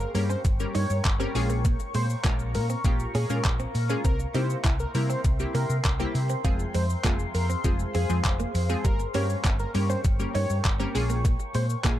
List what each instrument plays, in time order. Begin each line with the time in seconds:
Already playing: ambient pad A#4 C#5 G5 C#6
0.00 analog synth lead A#4, shaker
0.14 fingered electric bass G2, synth stab G3 A#3 C#4 G4 A#4, muted clean electric guitar stroke, open hi-hat, shaker
0.29 clean electric guitar C#4, analog synth lead C5, shaker
0.45 fingered electric bass G1, kick, closed hi-hat, shaker
0.60 synth stab G3 A#3 C#4 G4 A#4, shaker
0.75 fingered electric bass G2, clean electric guitar D#4, analog synth lead C#5, open hi-hat, shaker
0.90 fingered electric bass G2, shaker
1.05 fingered electric bass G1, kick, clap, closed hi-hat, shaker
1.20 synth stab G3 A#3 C#4 G4 A#4, clean electric guitar C4, shaker
1.35 fingered electric bass A#1, synth stab G#3 A#3 C#4 F4 G#4, ambient pad F5 A#5, muted clean electric guitar stroke, open hi-hat, shaker
1.50 clean electric guitar A#3, shaker
1.65 clean electric guitar A#3, kick, closed hi-hat, shaker
1.80 muted clean electric guitar stroke, shaker
1.95 fingered electric bass A#2, clean electric guitar G#3, analog synth lead C5, open hi-hat, shaker
2.10 shaker
2.25 fingered electric bass A#1, synth stab G#3 A#3 C#4 F4 A#4, clean electric guitar A#3, kick, clap, closed hi-hat, shaker
2.39 shaker
2.55 fingered electric bass A#2, analog synth lead A#4, muted clean electric guitar stroke, open hi-hat, shaker
2.70 clean electric guitar C4, shaker
2.85 fingered electric bass A#1, synth stab G#3 A#3 C#4 F4 G4, kick, closed hi-hat, shaker
3.00 shaker
3.15 fingered electric bass A#2, clean electric guitar C#4, analog synth lead G#4, open hi-hat, shaker
3.30 fingered electric bass A#2, synth stab G#3 A#3 C#4 F4 A#4, shaker
3.45 fingered electric bass A#1, kick, clap, closed hi-hat, shaker
3.60 clean electric guitar C4, shaker
3.75 fingered electric bass A#2, muted clean electric guitar stroke, open hi-hat, shaker
3.90 synth stab G#3 A#3 C#4 F4 G#4, clean electric guitar C#4, shaker
4.04 fingered electric bass C2, clean electric guitar C4, analog synth lead A#4, ambient pad E5 G5 C6, kick, closed hi-hat, shaker
4.20 muted clean electric guitar stroke, shaker
4.34 fingered electric bass C3, synth stab G3 A#3 C4 E4 G4, clean electric guitar D#4, analog synth lead C5, open hi-hat, shaker
4.50 shaker
4.64 fingered electric bass C2, clean electric guitar E4, kick, clap, closed hi-hat, shaker
4.80 analog synth lead A#4, shaker
4.95 fingered electric bass C3, synth stab G3 A#3 C4 E4 A#4, muted clean electric guitar stroke, open hi-hat, shaker
5.10 clean electric guitar C4, analog synth lead C5, shaker
5.24 fingered electric bass C2, kick, closed hi-hat, shaker
5.39 synth stab G3 A#3 C4 E4 G4, shaker
5.54 fingered electric bass C3, clean electric guitar A#3, analog synth lead A#4, open hi-hat, shaker
5.70 fingered electric bass C3, shaker
5.85 fingered electric bass C2, kick, clap, closed hi-hat, shaker
6.00 synth stab G3 A#3 C4 E4 G4, clean electric guitar A#3, shaker
6.15 fingered electric bass C3, muted clean electric guitar stroke, open hi-hat, shaker
6.30 clean electric guitar C4, shaker
6.44 fingered electric bass F1, synth stab F3 G#3 C4 F4 G#4, clean electric guitar F4, ambient pad G#4 C5 F5, kick, closed hi-hat, shaker
6.60 muted clean electric guitar stroke, shaker
6.74 fingered electric bass F2, clean electric guitar G#3, analog synth lead C5, open hi-hat, shaker
6.90 shaker
7.04 fingered electric bass F1, synth stab F3 G#3 C4 F4 G#4, clean electric guitar A#3, kick, clap, closed hi-hat, shaker
7.20 shaker
7.35 fingered electric bass F2, analog synth lead A#4, muted clean electric guitar stroke, open hi-hat, shaker
7.50 clean electric guitar C4, shaker
7.64 fingered electric bass F1, synth stab F3 G#3 C4 F4 G#4, kick, closed hi-hat, shaker
7.80 shaker
7.95 fingered electric bass F2, clean electric guitar C4, analog synth lead G#4, open hi-hat, shaker
8.09 fingered electric bass F2, synth stab F3 G#3 C4 F4 G#4, shaker
8.25 fingered electric bass F1, kick, clap, closed hi-hat, shaker
8.40 clean electric guitar A#3, shaker
8.54 fingered electric bass F2, muted clean electric guitar stroke, open hi-hat, shaker
8.69 synth stab F3 G#3 C4 F4 G#4, clean electric guitar C4, shaker
8.84 fingered electric bass G1, clean electric guitar G3, ambient pad A#4 C#5 G5 C#6, analog synth lead A#4, kick, closed hi-hat, shaker
9.00 muted clean electric guitar stroke, shaker
9.14 fingered electric bass G2, synth stab G3 A#3 C#4 G4 A#4, clean electric guitar A#3, analog synth lead C#5, open hi-hat, shaker
9.30 shaker
9.45 fingered electric bass G1, clean electric guitar C4, kick, clap, closed hi-hat, shaker
9.60 analog synth lead A#4, shaker
9.74 fingered electric bass G2, synth stab G3 A#3 C#4 G4 A#4, muted clean electric guitar stroke, open hi-hat, shaker
9.90 clean electric guitar C#4, analog synth lead C5, shaker
10.04 fingered electric bass G1, kick, closed hi-hat, shaker
10.19 synth stab G3 A#3 C#4 G4 A#4, shaker
10.35 fingered electric bass G2, clean electric guitar D#4, analog synth lead C#5, open hi-hat, shaker
10.50 fingered electric bass G2, shaker
10.65 fingered electric bass G1, kick, clap, closed hi-hat, shaker
10.80 synth stab G3 A#3 C#4 G4 A#4, clean electric guitar C4, shaker
10.95 fingered electric bass A#1, synth stab G#3 A#3 C#4 F4 G#4, ambient pad F5 G#5 C#6, muted clean electric guitar stroke, open hi-hat, shaker
11.10 clean electric guitar A#3, shaker
11.25 clean electric guitar A#3, kick, closed hi-hat, shaker
11.40 muted clean electric guitar stroke, shaker
11.55 fingered electric bass A#2, clean electric guitar G#3, analog synth lead C5, open hi-hat, shaker
11.70 shaker
11.84 fingered electric bass A#1, synth stab G#3 A#3 C#4 F4 G#4, clean electric guitar A#3, kick, clap, closed hi-hat, shaker